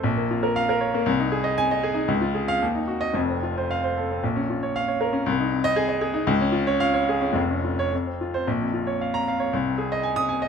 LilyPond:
\new Staff \with { instrumentName = "Grand piano" } { \time 2/4 \key bes \minor \tempo 4 = 115 << { r4 f''8 r8 | r4 aes''8 r8 | r8. f''16 r8. ees''16 | r4 f''8 r8 |
r4 f''8 r8 | r8. ees''8 r8. | r4 f''8 r8 | r8. des''16 r8. c''16 |
r4 r16 bes''8 r16 | r4 r16 ees'''8 r16 | } \\ { bes,,16 bes16 f'16 bes'8 bes'16 des''16 bes16 | c,16 ees'16 aes'16 ees''8 ees''16 aes'16 ees'16 | des,16 f'16 aes'8 ees,16 ees'16 ges'8 | <f,, f,>16 c'16 f'16 c''8 c''16 a'16 c'16 |
bes,,16 des'16 f'16 des''8 des''16 bes'16 des'16 | c,16 ees'16 c8 aes'16 ees''16 aes'16 ees'16 | des,16 des'16 f'16 des''8 des''16 aes'16 des'16 | <f,, f,>16 des'16 f'8 f,16 c'16 f'8 |
bes,,16 f,16 f'16 des''16 f''8 f''16 des''16 | c,16 c16 aes'16 ees''16 aes''8 aes''16 ees''16 | } >> }